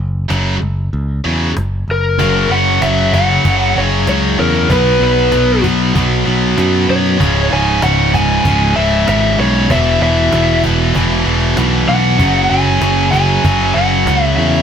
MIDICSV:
0, 0, Header, 1, 5, 480
1, 0, Start_track
1, 0, Tempo, 625652
1, 1682, Time_signature, 4, 2, 24, 8
1, 11217, End_track
2, 0, Start_track
2, 0, Title_t, "Lead electric guitar"
2, 0, Program_c, 0, 29
2, 1467, Note_on_c, 0, 70, 94
2, 1929, Note_on_c, 0, 78, 96
2, 1950, Note_off_c, 0, 70, 0
2, 2165, Note_off_c, 0, 78, 0
2, 2168, Note_on_c, 0, 76, 106
2, 2390, Note_off_c, 0, 76, 0
2, 2412, Note_on_c, 0, 78, 98
2, 2899, Note_on_c, 0, 73, 91
2, 2903, Note_off_c, 0, 78, 0
2, 3130, Note_off_c, 0, 73, 0
2, 3139, Note_on_c, 0, 73, 96
2, 3356, Note_off_c, 0, 73, 0
2, 3373, Note_on_c, 0, 70, 81
2, 3602, Note_on_c, 0, 71, 100
2, 3616, Note_off_c, 0, 70, 0
2, 3851, Note_off_c, 0, 71, 0
2, 3865, Note_on_c, 0, 71, 87
2, 4304, Note_off_c, 0, 71, 0
2, 5297, Note_on_c, 0, 73, 97
2, 5775, Note_on_c, 0, 80, 111
2, 5784, Note_off_c, 0, 73, 0
2, 6008, Note_off_c, 0, 80, 0
2, 6011, Note_on_c, 0, 78, 116
2, 6231, Note_off_c, 0, 78, 0
2, 6254, Note_on_c, 0, 80, 102
2, 6720, Note_on_c, 0, 76, 94
2, 6742, Note_off_c, 0, 80, 0
2, 6944, Note_off_c, 0, 76, 0
2, 6974, Note_on_c, 0, 76, 104
2, 7210, Note_off_c, 0, 76, 0
2, 7213, Note_on_c, 0, 73, 86
2, 7450, Note_off_c, 0, 73, 0
2, 7453, Note_on_c, 0, 76, 93
2, 7686, Note_off_c, 0, 76, 0
2, 7695, Note_on_c, 0, 76, 86
2, 8137, Note_off_c, 0, 76, 0
2, 9119, Note_on_c, 0, 78, 110
2, 9587, Note_on_c, 0, 80, 121
2, 9613, Note_off_c, 0, 78, 0
2, 10055, Note_off_c, 0, 80, 0
2, 10064, Note_on_c, 0, 80, 119
2, 10541, Note_on_c, 0, 78, 107
2, 10565, Note_off_c, 0, 80, 0
2, 10924, Note_off_c, 0, 78, 0
2, 10924, Note_on_c, 0, 76, 107
2, 11018, Note_off_c, 0, 76, 0
2, 11021, Note_on_c, 0, 76, 97
2, 11217, Note_off_c, 0, 76, 0
2, 11217, End_track
3, 0, Start_track
3, 0, Title_t, "Distorted electric guitar"
3, 0, Program_c, 1, 30
3, 227, Note_on_c, 1, 42, 90
3, 230, Note_on_c, 1, 49, 91
3, 236, Note_on_c, 1, 54, 100
3, 424, Note_off_c, 1, 42, 0
3, 425, Note_off_c, 1, 49, 0
3, 428, Note_off_c, 1, 54, 0
3, 954, Note_on_c, 1, 42, 88
3, 956, Note_on_c, 1, 49, 95
3, 960, Note_on_c, 1, 54, 92
3, 1149, Note_off_c, 1, 42, 0
3, 1150, Note_off_c, 1, 49, 0
3, 1152, Note_off_c, 1, 54, 0
3, 1681, Note_on_c, 1, 42, 102
3, 1685, Note_on_c, 1, 49, 95
3, 1687, Note_on_c, 1, 54, 116
3, 1908, Note_off_c, 1, 42, 0
3, 1909, Note_off_c, 1, 49, 0
3, 1917, Note_on_c, 1, 42, 89
3, 1918, Note_on_c, 1, 49, 91
3, 1921, Note_off_c, 1, 54, 0
3, 1924, Note_on_c, 1, 54, 104
3, 2153, Note_off_c, 1, 42, 0
3, 2160, Note_off_c, 1, 49, 0
3, 2162, Note_on_c, 1, 42, 80
3, 2168, Note_off_c, 1, 54, 0
3, 2169, Note_on_c, 1, 49, 94
3, 2171, Note_on_c, 1, 54, 88
3, 2393, Note_off_c, 1, 42, 0
3, 2394, Note_off_c, 1, 49, 0
3, 2402, Note_on_c, 1, 42, 93
3, 2403, Note_on_c, 1, 49, 91
3, 2406, Note_off_c, 1, 54, 0
3, 2409, Note_on_c, 1, 54, 96
3, 2635, Note_off_c, 1, 42, 0
3, 2637, Note_off_c, 1, 49, 0
3, 2641, Note_off_c, 1, 54, 0
3, 2645, Note_on_c, 1, 42, 108
3, 2646, Note_on_c, 1, 49, 101
3, 2650, Note_on_c, 1, 54, 121
3, 2879, Note_off_c, 1, 42, 0
3, 2885, Note_off_c, 1, 49, 0
3, 2888, Note_off_c, 1, 54, 0
3, 2888, Note_on_c, 1, 42, 93
3, 2894, Note_on_c, 1, 49, 96
3, 2897, Note_on_c, 1, 54, 98
3, 3119, Note_off_c, 1, 42, 0
3, 3122, Note_off_c, 1, 49, 0
3, 3127, Note_off_c, 1, 54, 0
3, 3128, Note_on_c, 1, 42, 85
3, 3131, Note_on_c, 1, 49, 92
3, 3137, Note_on_c, 1, 54, 93
3, 3350, Note_off_c, 1, 42, 0
3, 3355, Note_off_c, 1, 49, 0
3, 3359, Note_on_c, 1, 42, 71
3, 3360, Note_off_c, 1, 54, 0
3, 3364, Note_on_c, 1, 49, 86
3, 3369, Note_on_c, 1, 54, 93
3, 3588, Note_off_c, 1, 42, 0
3, 3591, Note_off_c, 1, 49, 0
3, 3593, Note_off_c, 1, 54, 0
3, 3607, Note_on_c, 1, 47, 105
3, 3612, Note_on_c, 1, 54, 97
3, 3615, Note_on_c, 1, 59, 101
3, 3833, Note_off_c, 1, 47, 0
3, 3835, Note_off_c, 1, 54, 0
3, 3841, Note_off_c, 1, 59, 0
3, 3842, Note_on_c, 1, 47, 91
3, 3845, Note_on_c, 1, 54, 93
3, 3850, Note_on_c, 1, 59, 106
3, 4066, Note_off_c, 1, 47, 0
3, 4071, Note_off_c, 1, 54, 0
3, 4073, Note_off_c, 1, 59, 0
3, 4075, Note_on_c, 1, 47, 91
3, 4080, Note_on_c, 1, 54, 96
3, 4082, Note_on_c, 1, 59, 99
3, 4311, Note_off_c, 1, 47, 0
3, 4316, Note_off_c, 1, 54, 0
3, 4316, Note_off_c, 1, 59, 0
3, 4320, Note_on_c, 1, 47, 90
3, 4325, Note_on_c, 1, 54, 98
3, 4325, Note_on_c, 1, 59, 100
3, 4547, Note_off_c, 1, 47, 0
3, 4554, Note_off_c, 1, 54, 0
3, 4556, Note_off_c, 1, 59, 0
3, 4556, Note_on_c, 1, 47, 113
3, 4564, Note_on_c, 1, 54, 109
3, 4565, Note_on_c, 1, 59, 127
3, 4783, Note_off_c, 1, 47, 0
3, 4787, Note_off_c, 1, 54, 0
3, 4789, Note_off_c, 1, 59, 0
3, 4792, Note_on_c, 1, 47, 86
3, 4796, Note_on_c, 1, 54, 97
3, 4798, Note_on_c, 1, 59, 94
3, 5031, Note_off_c, 1, 47, 0
3, 5035, Note_off_c, 1, 54, 0
3, 5038, Note_off_c, 1, 59, 0
3, 5040, Note_on_c, 1, 47, 76
3, 5045, Note_on_c, 1, 54, 86
3, 5047, Note_on_c, 1, 59, 94
3, 5271, Note_off_c, 1, 47, 0
3, 5274, Note_off_c, 1, 54, 0
3, 5277, Note_off_c, 1, 59, 0
3, 5280, Note_on_c, 1, 47, 89
3, 5283, Note_on_c, 1, 54, 91
3, 5286, Note_on_c, 1, 59, 86
3, 5508, Note_off_c, 1, 47, 0
3, 5509, Note_off_c, 1, 54, 0
3, 5511, Note_off_c, 1, 59, 0
3, 5512, Note_on_c, 1, 37, 95
3, 5512, Note_on_c, 1, 44, 104
3, 5518, Note_on_c, 1, 49, 114
3, 5744, Note_off_c, 1, 37, 0
3, 5746, Note_off_c, 1, 44, 0
3, 5750, Note_off_c, 1, 49, 0
3, 5753, Note_on_c, 1, 37, 92
3, 5755, Note_on_c, 1, 44, 100
3, 5760, Note_on_c, 1, 49, 112
3, 5983, Note_off_c, 1, 37, 0
3, 5987, Note_off_c, 1, 44, 0
3, 5990, Note_off_c, 1, 49, 0
3, 5992, Note_on_c, 1, 37, 82
3, 5996, Note_on_c, 1, 44, 89
3, 5999, Note_on_c, 1, 49, 102
3, 6222, Note_off_c, 1, 37, 0
3, 6229, Note_off_c, 1, 44, 0
3, 6231, Note_on_c, 1, 37, 85
3, 6235, Note_off_c, 1, 49, 0
3, 6239, Note_on_c, 1, 44, 93
3, 6244, Note_on_c, 1, 49, 101
3, 6464, Note_off_c, 1, 37, 0
3, 6467, Note_off_c, 1, 44, 0
3, 6472, Note_off_c, 1, 49, 0
3, 6473, Note_on_c, 1, 37, 89
3, 6477, Note_on_c, 1, 44, 112
3, 6481, Note_on_c, 1, 49, 115
3, 6704, Note_off_c, 1, 37, 0
3, 6706, Note_off_c, 1, 44, 0
3, 6711, Note_off_c, 1, 49, 0
3, 6713, Note_on_c, 1, 37, 85
3, 6715, Note_on_c, 1, 44, 89
3, 6721, Note_on_c, 1, 49, 98
3, 6942, Note_off_c, 1, 37, 0
3, 6945, Note_off_c, 1, 44, 0
3, 6949, Note_off_c, 1, 49, 0
3, 6951, Note_on_c, 1, 37, 86
3, 6954, Note_on_c, 1, 44, 86
3, 6959, Note_on_c, 1, 49, 85
3, 7184, Note_off_c, 1, 37, 0
3, 7186, Note_off_c, 1, 44, 0
3, 7191, Note_off_c, 1, 49, 0
3, 7193, Note_on_c, 1, 37, 82
3, 7195, Note_on_c, 1, 44, 96
3, 7200, Note_on_c, 1, 49, 101
3, 7423, Note_off_c, 1, 37, 0
3, 7424, Note_off_c, 1, 44, 0
3, 7426, Note_off_c, 1, 49, 0
3, 7428, Note_on_c, 1, 40, 103
3, 7436, Note_on_c, 1, 47, 94
3, 7438, Note_on_c, 1, 52, 98
3, 7667, Note_off_c, 1, 40, 0
3, 7673, Note_off_c, 1, 47, 0
3, 7674, Note_off_c, 1, 52, 0
3, 7676, Note_on_c, 1, 40, 84
3, 7683, Note_on_c, 1, 47, 91
3, 7683, Note_on_c, 1, 52, 92
3, 7911, Note_off_c, 1, 40, 0
3, 7911, Note_off_c, 1, 47, 0
3, 7915, Note_off_c, 1, 52, 0
3, 7920, Note_on_c, 1, 40, 91
3, 7921, Note_on_c, 1, 47, 100
3, 7925, Note_on_c, 1, 52, 90
3, 8150, Note_off_c, 1, 40, 0
3, 8154, Note_off_c, 1, 47, 0
3, 8157, Note_off_c, 1, 52, 0
3, 8159, Note_on_c, 1, 40, 100
3, 8163, Note_on_c, 1, 47, 84
3, 8166, Note_on_c, 1, 52, 100
3, 8388, Note_off_c, 1, 40, 0
3, 8392, Note_off_c, 1, 47, 0
3, 8395, Note_off_c, 1, 52, 0
3, 8398, Note_on_c, 1, 40, 91
3, 8401, Note_on_c, 1, 47, 112
3, 8404, Note_on_c, 1, 52, 123
3, 8625, Note_off_c, 1, 40, 0
3, 8629, Note_off_c, 1, 47, 0
3, 8634, Note_off_c, 1, 52, 0
3, 8635, Note_on_c, 1, 40, 79
3, 8638, Note_on_c, 1, 47, 96
3, 8643, Note_on_c, 1, 52, 83
3, 8863, Note_off_c, 1, 40, 0
3, 8867, Note_off_c, 1, 47, 0
3, 8871, Note_off_c, 1, 52, 0
3, 8872, Note_on_c, 1, 40, 75
3, 8877, Note_on_c, 1, 47, 78
3, 8880, Note_on_c, 1, 52, 92
3, 9104, Note_off_c, 1, 40, 0
3, 9105, Note_off_c, 1, 47, 0
3, 9112, Note_off_c, 1, 52, 0
3, 9113, Note_on_c, 1, 40, 76
3, 9114, Note_on_c, 1, 47, 77
3, 9121, Note_on_c, 1, 52, 91
3, 9341, Note_off_c, 1, 40, 0
3, 9342, Note_off_c, 1, 47, 0
3, 9346, Note_off_c, 1, 52, 0
3, 9348, Note_on_c, 1, 42, 104
3, 9354, Note_on_c, 1, 49, 105
3, 9360, Note_on_c, 1, 54, 109
3, 9584, Note_off_c, 1, 42, 0
3, 9589, Note_off_c, 1, 49, 0
3, 9594, Note_on_c, 1, 42, 88
3, 9598, Note_on_c, 1, 49, 94
3, 9599, Note_off_c, 1, 54, 0
3, 9602, Note_on_c, 1, 54, 91
3, 9821, Note_off_c, 1, 42, 0
3, 9823, Note_off_c, 1, 49, 0
3, 9830, Note_on_c, 1, 42, 83
3, 9832, Note_off_c, 1, 54, 0
3, 9832, Note_on_c, 1, 49, 88
3, 9835, Note_on_c, 1, 54, 96
3, 10056, Note_off_c, 1, 42, 0
3, 10060, Note_off_c, 1, 49, 0
3, 10065, Note_on_c, 1, 42, 90
3, 10068, Note_off_c, 1, 54, 0
3, 10069, Note_on_c, 1, 49, 91
3, 10071, Note_on_c, 1, 54, 93
3, 10298, Note_off_c, 1, 42, 0
3, 10302, Note_off_c, 1, 49, 0
3, 10307, Note_off_c, 1, 54, 0
3, 10307, Note_on_c, 1, 42, 97
3, 10311, Note_on_c, 1, 49, 107
3, 10317, Note_on_c, 1, 54, 127
3, 10543, Note_off_c, 1, 42, 0
3, 10546, Note_off_c, 1, 49, 0
3, 10550, Note_off_c, 1, 54, 0
3, 10552, Note_on_c, 1, 42, 90
3, 10556, Note_on_c, 1, 49, 86
3, 10559, Note_on_c, 1, 54, 99
3, 10787, Note_off_c, 1, 42, 0
3, 10792, Note_off_c, 1, 49, 0
3, 10794, Note_off_c, 1, 54, 0
3, 10796, Note_on_c, 1, 42, 88
3, 10802, Note_on_c, 1, 49, 80
3, 10803, Note_on_c, 1, 54, 92
3, 11018, Note_off_c, 1, 42, 0
3, 11022, Note_off_c, 1, 49, 0
3, 11025, Note_off_c, 1, 54, 0
3, 11027, Note_on_c, 1, 42, 83
3, 11031, Note_on_c, 1, 49, 99
3, 11034, Note_on_c, 1, 54, 97
3, 11217, Note_off_c, 1, 42, 0
3, 11217, Note_off_c, 1, 49, 0
3, 11217, Note_off_c, 1, 54, 0
3, 11217, End_track
4, 0, Start_track
4, 0, Title_t, "Picked electric bass"
4, 0, Program_c, 2, 34
4, 0, Note_on_c, 2, 30, 88
4, 192, Note_off_c, 2, 30, 0
4, 230, Note_on_c, 2, 30, 82
4, 435, Note_off_c, 2, 30, 0
4, 472, Note_on_c, 2, 30, 91
4, 677, Note_off_c, 2, 30, 0
4, 714, Note_on_c, 2, 37, 89
4, 918, Note_off_c, 2, 37, 0
4, 962, Note_on_c, 2, 40, 84
4, 1164, Note_off_c, 2, 40, 0
4, 1201, Note_on_c, 2, 30, 88
4, 1404, Note_off_c, 2, 30, 0
4, 1440, Note_on_c, 2, 30, 79
4, 1683, Note_off_c, 2, 30, 0
4, 1686, Note_on_c, 2, 30, 93
4, 1898, Note_off_c, 2, 30, 0
4, 1912, Note_on_c, 2, 30, 84
4, 2131, Note_off_c, 2, 30, 0
4, 2157, Note_on_c, 2, 30, 82
4, 2587, Note_off_c, 2, 30, 0
4, 2646, Note_on_c, 2, 30, 91
4, 2859, Note_off_c, 2, 30, 0
4, 2889, Note_on_c, 2, 30, 99
4, 3101, Note_off_c, 2, 30, 0
4, 3131, Note_on_c, 2, 37, 88
4, 3342, Note_off_c, 2, 37, 0
4, 3370, Note_on_c, 2, 40, 85
4, 3582, Note_off_c, 2, 40, 0
4, 3604, Note_on_c, 2, 35, 98
4, 3818, Note_off_c, 2, 35, 0
4, 3840, Note_on_c, 2, 35, 91
4, 4055, Note_off_c, 2, 35, 0
4, 4087, Note_on_c, 2, 35, 86
4, 4299, Note_off_c, 2, 35, 0
4, 4327, Note_on_c, 2, 35, 110
4, 4539, Note_off_c, 2, 35, 0
4, 4566, Note_on_c, 2, 35, 91
4, 4779, Note_off_c, 2, 35, 0
4, 4808, Note_on_c, 2, 35, 98
4, 5020, Note_off_c, 2, 35, 0
4, 5050, Note_on_c, 2, 42, 92
4, 5261, Note_off_c, 2, 42, 0
4, 5285, Note_on_c, 2, 42, 94
4, 5498, Note_off_c, 2, 42, 0
4, 5526, Note_on_c, 2, 25, 104
4, 5738, Note_off_c, 2, 25, 0
4, 5763, Note_on_c, 2, 25, 98
4, 5976, Note_off_c, 2, 25, 0
4, 6009, Note_on_c, 2, 25, 101
4, 6433, Note_off_c, 2, 25, 0
4, 6483, Note_on_c, 2, 25, 91
4, 6696, Note_off_c, 2, 25, 0
4, 6723, Note_on_c, 2, 25, 95
4, 6936, Note_off_c, 2, 25, 0
4, 6964, Note_on_c, 2, 32, 99
4, 7177, Note_off_c, 2, 32, 0
4, 7205, Note_on_c, 2, 35, 88
4, 7417, Note_off_c, 2, 35, 0
4, 7442, Note_on_c, 2, 28, 102
4, 7655, Note_off_c, 2, 28, 0
4, 7673, Note_on_c, 2, 28, 92
4, 7890, Note_off_c, 2, 28, 0
4, 7921, Note_on_c, 2, 28, 87
4, 8134, Note_off_c, 2, 28, 0
4, 8160, Note_on_c, 2, 28, 106
4, 8373, Note_off_c, 2, 28, 0
4, 8400, Note_on_c, 2, 28, 90
4, 8613, Note_off_c, 2, 28, 0
4, 8637, Note_on_c, 2, 28, 95
4, 8851, Note_off_c, 2, 28, 0
4, 8878, Note_on_c, 2, 35, 94
4, 9092, Note_off_c, 2, 35, 0
4, 9117, Note_on_c, 2, 35, 89
4, 9353, Note_on_c, 2, 30, 98
4, 9365, Note_off_c, 2, 35, 0
4, 9569, Note_off_c, 2, 30, 0
4, 9595, Note_on_c, 2, 30, 97
4, 9809, Note_off_c, 2, 30, 0
4, 9829, Note_on_c, 2, 30, 87
4, 10259, Note_off_c, 2, 30, 0
4, 10315, Note_on_c, 2, 30, 97
4, 10529, Note_off_c, 2, 30, 0
4, 10550, Note_on_c, 2, 30, 97
4, 10766, Note_off_c, 2, 30, 0
4, 10785, Note_on_c, 2, 37, 94
4, 11003, Note_off_c, 2, 37, 0
4, 11028, Note_on_c, 2, 40, 85
4, 11217, Note_off_c, 2, 40, 0
4, 11217, End_track
5, 0, Start_track
5, 0, Title_t, "Cajon"
5, 232, Note_on_c, 9, 38, 94
5, 309, Note_off_c, 9, 38, 0
5, 1202, Note_on_c, 9, 38, 105
5, 1278, Note_off_c, 9, 38, 0
5, 1685, Note_on_c, 9, 36, 112
5, 1761, Note_off_c, 9, 36, 0
5, 2163, Note_on_c, 9, 38, 111
5, 2240, Note_off_c, 9, 38, 0
5, 2407, Note_on_c, 9, 36, 76
5, 2484, Note_off_c, 9, 36, 0
5, 2648, Note_on_c, 9, 36, 113
5, 2724, Note_off_c, 9, 36, 0
5, 3124, Note_on_c, 9, 38, 121
5, 3201, Note_off_c, 9, 38, 0
5, 3485, Note_on_c, 9, 38, 34
5, 3562, Note_off_c, 9, 38, 0
5, 3607, Note_on_c, 9, 36, 121
5, 3683, Note_off_c, 9, 36, 0
5, 4082, Note_on_c, 9, 38, 104
5, 4158, Note_off_c, 9, 38, 0
5, 4328, Note_on_c, 9, 36, 77
5, 4404, Note_off_c, 9, 36, 0
5, 4570, Note_on_c, 9, 36, 117
5, 4646, Note_off_c, 9, 36, 0
5, 5046, Note_on_c, 9, 38, 117
5, 5123, Note_off_c, 9, 38, 0
5, 5410, Note_on_c, 9, 38, 35
5, 5487, Note_off_c, 9, 38, 0
5, 5527, Note_on_c, 9, 36, 118
5, 5604, Note_off_c, 9, 36, 0
5, 6002, Note_on_c, 9, 38, 108
5, 6078, Note_off_c, 9, 38, 0
5, 6246, Note_on_c, 9, 36, 76
5, 6323, Note_off_c, 9, 36, 0
5, 6485, Note_on_c, 9, 36, 113
5, 6561, Note_off_c, 9, 36, 0
5, 6964, Note_on_c, 9, 38, 114
5, 7041, Note_off_c, 9, 38, 0
5, 7323, Note_on_c, 9, 38, 32
5, 7400, Note_off_c, 9, 38, 0
5, 7443, Note_on_c, 9, 36, 117
5, 7520, Note_off_c, 9, 36, 0
5, 7922, Note_on_c, 9, 38, 106
5, 7998, Note_off_c, 9, 38, 0
5, 8160, Note_on_c, 9, 36, 73
5, 8237, Note_off_c, 9, 36, 0
5, 8399, Note_on_c, 9, 36, 117
5, 8475, Note_off_c, 9, 36, 0
5, 8877, Note_on_c, 9, 38, 124
5, 8954, Note_off_c, 9, 38, 0
5, 9236, Note_on_c, 9, 38, 35
5, 9313, Note_off_c, 9, 38, 0
5, 9357, Note_on_c, 9, 36, 112
5, 9433, Note_off_c, 9, 36, 0
5, 9832, Note_on_c, 9, 38, 105
5, 9909, Note_off_c, 9, 38, 0
5, 10076, Note_on_c, 9, 36, 73
5, 10153, Note_off_c, 9, 36, 0
5, 10317, Note_on_c, 9, 36, 112
5, 10393, Note_off_c, 9, 36, 0
5, 10794, Note_on_c, 9, 38, 121
5, 10871, Note_off_c, 9, 38, 0
5, 11157, Note_on_c, 9, 38, 31
5, 11217, Note_off_c, 9, 38, 0
5, 11217, End_track
0, 0, End_of_file